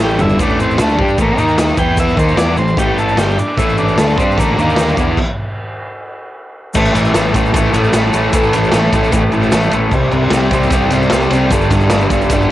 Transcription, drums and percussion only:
0.09 shaker
0.19 floor tom, shaker
0.29 shaker
0.39 kick, crash, shaker
0.49 shaker
0.60 shaker
0.71 shaker
0.78 snare, crash, shaker
0.89 shaker
0.99 kick
1.08 shaker
1.18 kick, crash, shaker
1.38 shaker
1.48 shaker
1.58 snare, crash, shaker
1.68 shaker
1.77 kick, shaker
1.97 kick, crash, shaker
2.09 shaker
2.17 kick, shaker
2.29 shaker
2.38 snare, crash, shaker
2.57 shaker
2.68 shaker
2.77 kick, crash, shaker
2.98 shaker
3.09 shaker
3.17 snare, crash, shaker
3.30 shaker
3.39 shaker
3.58 kick, crash, shaker
3.69 shaker
3.78 shaker
3.88 shaker
3.98 snare, crash, shaker
4.09 shaker
4.17 kick, shaker
4.31 shaker
4.38 kick, crash, shaker
4.59 shaker
4.69 shaker
4.76 snare, crash, shaker
4.89 shaker
4.97 kick, shaker
5.17 kick, crash
6.74 kick, crash, shaker
6.86 shaker
6.95 ride, shaker
7.05 shaker
7.14 snare, ride, shaker
7.34 kick, ride, shaker
7.46 shaker
7.54 kick, ride, shaker
7.74 ride, shaker
7.84 shaker
7.93 snare, ride, shaker
8.14 ride, shaker
8.33 kick, ride, shaker
8.43 shaker
8.53 ride, shaker
8.64 shaker
8.72 snare, ride, shaker
8.93 kick, ride, shaker
9.04 shaker
9.12 kick, ride, shaker
9.32 ride, shaker
9.43 shaker
9.52 snare, ride, shaker
9.63 shaker
9.71 ride, shaker
9.91 kick, crash, shaker
10.04 shaker
10.11 ride, shaker
10.31 snare, ride, shaker
10.51 kick, ride, shaker
10.63 shaker
10.70 kick, ride, shaker
10.90 ride, shaker
11.02 shaker
11.10 snare, ride, shaker
11.22 shaker
11.30 ride, shaker
11.50 kick, ride, shaker
11.61 shaker
11.70 kick, ride, shaker
11.80 shaker
11.90 snare, ride, shaker
12.00 shaker
12.10 kick, ride, shaker
12.21 shaker
12.29 kick, ride, shaker
12.42 shaker

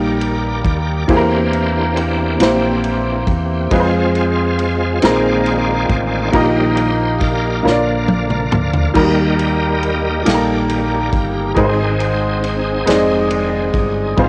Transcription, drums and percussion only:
0.21 ride
0.65 kick, ride
1.09 kick, ride
1.53 ride
1.97 ride
2.40 snare, ride
2.84 ride
3.27 kick, ride
3.71 kick, ride
4.15 ride
4.59 ride
5.02 snare, ride
5.46 ride
5.90 kick, ride
6.33 kick, ride
6.77 ride
7.21 kick, ride
7.67 snare
8.08 high tom
8.30 mid tom
8.52 mid tom
8.73 floor tom
8.95 kick, crash
9.39 ride
9.83 ride
10.26 snare, ride
10.70 ride
11.13 kick, ride
11.57 kick, ride
12.00 ride
12.44 ride
12.87 snare, ride
13.30 ride
13.74 kick, ride
14.17 kick, ride

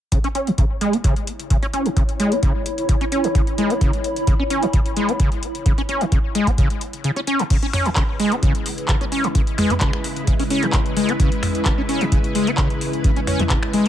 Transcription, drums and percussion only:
0.12 kick, closed hi-hat
0.24 closed hi-hat
0.35 closed hi-hat
0.47 closed hi-hat
0.58 kick, closed hi-hat
0.81 closed hi-hat
0.93 closed hi-hat
1.04 kick, closed hi-hat
1.16 closed hi-hat
1.27 closed hi-hat
1.40 closed hi-hat
1.50 kick, closed hi-hat
1.63 closed hi-hat
1.73 closed hi-hat
1.86 closed hi-hat
1.97 kick, closed hi-hat
2.09 closed hi-hat
2.20 closed hi-hat
2.32 closed hi-hat
2.43 kick, closed hi-hat
2.66 closed hi-hat
2.78 closed hi-hat
2.89 kick, closed hi-hat
3.01 closed hi-hat
3.12 closed hi-hat
3.24 closed hi-hat
3.35 kick, closed hi-hat
3.47 closed hi-hat
3.58 closed hi-hat
3.70 closed hi-hat
3.81 kick, closed hi-hat
3.93 closed hi-hat
4.04 closed hi-hat
4.16 closed hi-hat
4.27 kick, closed hi-hat
4.50 closed hi-hat
4.63 closed hi-hat
4.73 kick, closed hi-hat
4.86 closed hi-hat
4.97 closed hi-hat
5.09 closed hi-hat
5.20 kick, closed hi-hat
5.32 closed hi-hat
5.43 closed hi-hat
5.55 closed hi-hat
5.66 kick, closed hi-hat
5.78 closed hi-hat
5.89 closed hi-hat
6.01 closed hi-hat
6.12 kick, closed hi-hat
6.35 closed hi-hat
6.47 kick, closed hi-hat
6.58 kick, closed hi-hat
6.70 closed hi-hat
6.81 closed hi-hat
6.93 closed hi-hat
7.04 closed hi-hat
7.16 closed hi-hat
7.27 closed hi-hat
7.39 closed hi-hat
7.50 kick, closed hi-hat, crash
7.63 closed hi-hat
7.73 finger snap, mid tom, open hi-hat
7.86 closed hi-hat
7.96 kick, clap, closed hi-hat
8.20 open hi-hat
8.32 closed hi-hat
8.43 kick, closed hi-hat
8.55 closed hi-hat
8.66 open hi-hat
8.78 closed hi-hat
8.88 kick, clap, closed hi-hat
9.01 closed hi-hat
9.12 open hi-hat
9.24 closed hi-hat
9.35 kick, closed hi-hat
9.47 closed hi-hat
9.58 finger snap, mid tom, open hi-hat
9.70 closed hi-hat, mid tom
9.81 kick, clap, closed hi-hat
9.93 finger snap
10.04 open hi-hat
10.16 closed hi-hat
10.27 kick, closed hi-hat
10.40 open hi-hat
10.50 open hi-hat
10.63 closed hi-hat
10.73 kick, clap, closed hi-hat
10.86 closed hi-hat
10.97 open hi-hat
11.09 closed hi-hat
11.20 kick, closed hi-hat
11.32 closed hi-hat
11.43 finger snap, mid tom, open hi-hat
11.55 closed hi-hat
11.65 kick, clap, closed hi-hat
11.89 open hi-hat
12.01 closed hi-hat
12.12 kick, closed hi-hat
12.24 closed hi-hat
12.35 open hi-hat
12.47 closed hi-hat
12.58 kick, clap, closed hi-hat
12.70 closed hi-hat
12.81 open hi-hat
12.93 closed hi-hat
13.04 kick, closed hi-hat
13.16 closed hi-hat
13.27 finger snap, mid tom, open hi-hat
13.39 closed hi-hat, mid tom
13.50 kick, clap, closed hi-hat
13.63 finger snap
13.73 open hi-hat

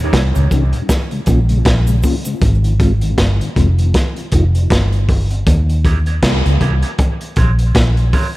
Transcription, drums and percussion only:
0.13 kick, snare, closed hi-hat
0.35 closed hi-hat, cabasa
0.51 kick, closed hi-hat, cabasa
0.73 closed hi-hat
0.89 kick, snare, closed hi-hat, cabasa
1.11 closed hi-hat
1.26 kick, closed hi-hat, cabasa
1.49 closed hi-hat
1.65 kick, snare, closed hi-hat
1.87 closed hi-hat, cabasa
2.03 kick, open hi-hat, cabasa
2.25 closed hi-hat, cabasa
2.42 kick, closed hi-hat
2.64 closed hi-hat
2.80 kick, closed hi-hat
3.01 closed hi-hat
3.18 kick, snare, closed hi-hat
3.41 closed hi-hat
3.56 kick, closed hi-hat
3.78 closed hi-hat
3.94 kick, snare, closed hi-hat
4.16 closed hi-hat
4.32 kick, closed hi-hat
4.55 closed hi-hat
4.70 kick, snare, closed hi-hat
4.93 closed hi-hat
5.09 kick, open hi-hat
5.31 closed hi-hat
5.47 kick, closed hi-hat
5.70 closed hi-hat
5.85 kick, closed hi-hat
6.06 closed hi-hat
6.23 kick, snare, closed hi-hat
6.46 closed hi-hat
6.61 kick, closed hi-hat
6.83 closed hi-hat
6.99 kick, closed hi-hat
7.21 closed hi-hat
7.36 kick, closed hi-hat
7.59 closed hi-hat
7.75 kick, snare, closed hi-hat
7.97 closed hi-hat
8.13 kick, open hi-hat

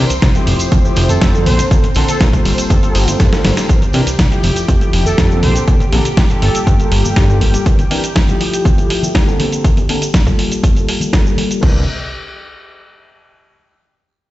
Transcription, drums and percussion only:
0.09 closed hi-hat, tambourine, shaker
0.22 kick, snare, closed hi-hat, tambourine, shaker
0.35 closed hi-hat, high conga, low conga, shaker
0.47 open hi-hat, tambourine
0.59 closed hi-hat, tambourine, shaker
0.72 kick, closed hi-hat, tambourine, high conga, shaker
0.85 shaker
0.96 open hi-hat, tambourine
1.09 closed hi-hat, tambourine, high conga, shaker
1.21 kick, snare, closed hi-hat, shaker
1.35 shaker
1.46 open hi-hat, tambourine, high conga
1.59 closed hi-hat, tambourine, shaker
1.71 kick, closed hi-hat, shaker
1.83 closed hi-hat, high conga, shaker
1.95 open hi-hat, tambourine
2.08 closed hi-hat, tambourine, shaker
2.19 kick, snare, closed hi-hat, tambourine, shaker
2.33 kick, closed hi-hat, high conga, low conga, shaker
2.45 open hi-hat, tambourine
2.58 closed hi-hat, tambourine, shaker
2.70 kick, closed hi-hat, tambourine, high conga, shaker
2.83 closed hi-hat, shaker
2.95 open hi-hat, tambourine
3.07 closed hi-hat, tambourine, high conga, shaker
3.20 kick, snare, closed hi-hat, shaker
3.33 snare, shaker
3.45 snare, open hi-hat, tambourine, high conga
3.57 snare, closed hi-hat, tambourine, shaker
3.69 kick, closed hi-hat, shaker
3.82 closed hi-hat, high conga, shaker
3.93 open hi-hat, tambourine
4.06 closed hi-hat, tambourine, shaker
4.19 kick, snare, closed hi-hat, shaker
4.31 closed hi-hat, high conga, low conga, shaker
4.43 open hi-hat, tambourine
4.56 closed hi-hat, tambourine, shaker
4.68 kick, closed hi-hat, tambourine, high conga, shaker
4.81 closed hi-hat, shaker
4.93 open hi-hat, tambourine
5.05 tambourine, high conga, shaker
5.18 kick, snare, closed hi-hat, shaker
5.31 shaker
5.43 open hi-hat, tambourine, high conga
5.55 closed hi-hat, tambourine, shaker
5.68 kick, closed hi-hat, shaker
5.80 closed hi-hat, high conga, shaker
5.93 open hi-hat, tambourine
6.05 closed hi-hat, tambourine, shaker
6.17 kick, snare, closed hi-hat, shaker
6.30 closed hi-hat, high conga, low conga, shaker
6.42 open hi-hat, tambourine
6.55 closed hi-hat, tambourine, shaker
6.67 kick, closed hi-hat, tambourine, high conga, shaker
6.80 closed hi-hat, shaker
6.92 open hi-hat, tambourine
7.05 tambourine, high conga, shaker
7.16 kick, snare, closed hi-hat, shaker
7.30 shaker
7.40 open hi-hat, tambourine, high conga
7.54 closed hi-hat, tambourine, shaker
7.66 kick, closed hi-hat, shaker
7.79 closed hi-hat, high conga, shaker
7.91 open hi-hat, tambourine
8.03 closed hi-hat, tambourine, shaker
8.16 kick, snare, closed hi-hat, shaker
8.28 closed hi-hat, high conga, low conga, shaker
8.40 open hi-hat, tambourine
8.53 closed hi-hat, shaker
8.65 kick, closed hi-hat, tambourine, high conga, shaker
8.78 closed hi-hat, shaker
8.90 open hi-hat, tambourine
9.03 tambourine, high conga, shaker
9.15 kick, snare, closed hi-hat, shaker
9.28 shaker
9.40 open hi-hat, tambourine, high conga
9.52 closed hi-hat, tambourine, shaker
9.64 kick, closed hi-hat, shaker
9.77 closed hi-hat, high conga, shaker
9.89 open hi-hat, tambourine
10.02 closed hi-hat, tambourine, shaker
10.14 kick, snare, closed hi-hat, shaker
10.26 kick, closed hi-hat, high conga, low conga, shaker
10.38 open hi-hat, tambourine
10.51 closed hi-hat, tambourine, shaker
10.63 kick, closed hi-hat, tambourine, high conga, shaker
10.77 closed hi-hat, shaker
10.88 open hi-hat, tambourine
11.00 closed hi-hat, tambourine, high conga, shaker
11.13 kick, snare, closed hi-hat, tambourine, shaker
11.27 shaker
11.37 open hi-hat, tambourine, high conga
11.51 closed hi-hat, tambourine, shaker
11.63 kick, crash

